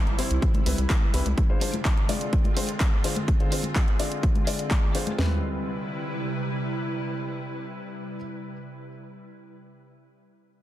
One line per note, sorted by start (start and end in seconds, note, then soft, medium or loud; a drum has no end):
0.00 1.34 C3 medium
0.00 1.34 G3 medium
0.00 1.34 E4 medium
0.00 downlifter medium
0.07 0.15 G1 medium
0.07 closed hi-hat soft
0.18 0.63 G3 medium
0.18 0.63 C4 medium
0.18 0.63 E4 medium
0.18 0.63 C5 medium
0.18 open hi-hat loud
0.31 0.39 C2 medium
0.31 closed hi-hat soft
0.42 kick loud
0.42 closed hi-hat medium
0.54 closed hi-hat soft
0.54 high conga medium
0.66 0.74 C2 medium
0.66 0.76 G3 medium
0.66 0.76 C4 medium
0.66 0.76 E4 medium
0.66 0.76 B4 medium
0.66 open hi-hat loud
0.78 0.86 C2 medium
0.78 closed hi-hat medium
0.90 kick loud
0.90 clap loud
0.90 closed hi-hat medium
0.90 high conga medium
1.14 1.22 C2 medium
1.14 1.23 G3 medium
1.14 1.23 C4 medium
1.14 1.23 E4 medium
1.14 1.23 B4 medium
1.14 open hi-hat loud
1.26 1.34 C2 medium
1.26 closed hi-hat soft
1.26 high conga medium
1.38 5.15 D3 medium
1.38 5.15 G#3 medium
1.38 5.15 C4 medium
1.38 5.15 F4 medium
1.38 kick loud
1.38 closed hi-hat medium
1.50 1.60 G#3 medium
1.50 1.60 D4 medium
1.50 1.60 F4 medium
1.50 1.60 C5 medium
1.61 1.71 G#3 medium
1.61 1.71 D4 medium
1.61 1.71 F4 medium
1.61 1.71 C5 medium
1.61 open hi-hat loud
1.74 closed hi-hat soft
1.74 high conga medium
1.85 kick loud
1.85 clap loud
1.85 closed hi-hat medium
1.97 closed hi-hat soft
2.09 2.54 G#3 medium
2.09 2.54 D4 medium
2.09 2.54 F4 medium
2.09 2.54 D5 medium
2.09 open hi-hat loud
2.09 high conga medium
2.21 closed hi-hat soft
2.33 kick loud
2.33 closed hi-hat medium
2.44 closed hi-hat soft
2.44 high conga medium
2.57 2.66 G#3 medium
2.57 2.66 D4 medium
2.57 2.66 F4 medium
2.57 2.66 C5 medium
2.57 open hi-hat loud
2.69 closed hi-hat soft
2.80 kick loud
2.80 clap loud
2.80 closed hi-hat medium
2.80 high conga medium
3.04 3.14 G#3 medium
3.04 3.14 D4 medium
3.04 3.14 F4 medium
3.04 3.14 C5 medium
3.04 open hi-hat loud
3.16 closed hi-hat soft
3.16 high conga medium
3.28 kick loud
3.28 closed hi-hat medium
3.40 3.50 G#3 medium
3.40 3.50 D4 medium
3.40 3.50 F4 medium
3.40 3.50 C5 medium
3.40 closed hi-hat soft
3.52 3.62 G#3 medium
3.52 3.62 D4 medium
3.52 3.62 F4 medium
3.52 3.62 C5 medium
3.52 open hi-hat loud
3.63 closed hi-hat soft
3.63 high conga medium
3.75 kick loud
3.75 clap loud
3.75 closed hi-hat medium
3.88 closed hi-hat soft
4.00 4.44 G#3 medium
4.00 4.44 D4 medium
4.00 4.44 F4 medium
4.00 4.44 D5 medium
4.00 open hi-hat medium
4.12 closed hi-hat soft
4.23 kick loud
4.23 closed hi-hat medium
4.35 closed hi-hat soft
4.35 high conga medium
4.47 4.92 G#3 medium
4.47 4.92 D4 medium
4.47 4.92 F4 medium
4.47 4.92 D5 medium
4.47 open hi-hat loud
4.59 closed hi-hat soft
4.71 kick loud
4.71 clap loud
4.71 closed hi-hat medium
4.71 high conga medium
4.95 5.10 G#3 medium
4.95 5.10 D4 medium
4.95 5.10 F4 medium
4.95 5.10 C5 medium
4.95 open hi-hat medium
5.07 closed hi-hat soft
5.07 high conga medium
5.18 8.16 C3 medium
5.18 8.16 G3 medium
5.18 8.16 C4 medium
5.18 8.16 E4 medium
5.18 8.16 B4 medium
5.18 snare medium
5.18 floor tom medium